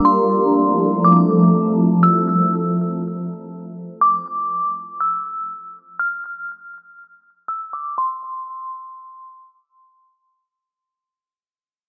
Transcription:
0.05 F3 A3 C4 E4 A4 C6
1.04 D6
2.03 E6
4.01 D6
5.00 E6
5.99 F6
7.48 E6
7.73 D6
7.98 C6

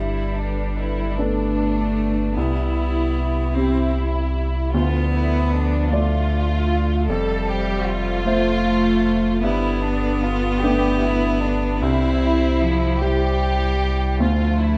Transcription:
Already playing: G1 G2 G3 D4 E4 A4 B4
0.36 D4
0.76 E4
1.17 A3 B3 D4 A4
2.35 C2 B3 E4 G4 E5
3.54 C4 E4 G4
4.71 D2 F3 B3 F4 A4 D5
5.13 E4
5.53 D4
5.91 A3 F4 D5
7.08 F1 F2 G3 A4 C5 E5
7.48 G4
7.86 F4
8.25 A3 C5 E5
9.42 G1 G2 B3 D4 E4 A4 B4
9.82 D4
10.23 F4
10.61 A3 D4 G4 B4
11.01 E4
11.41 D4
11.81 C2 C4 E4 G4 C5
12.61 F3
13.00 G3 E4 G4 C5
14.18 D2 F3 A3 D4 F4 A4
14.61 E4

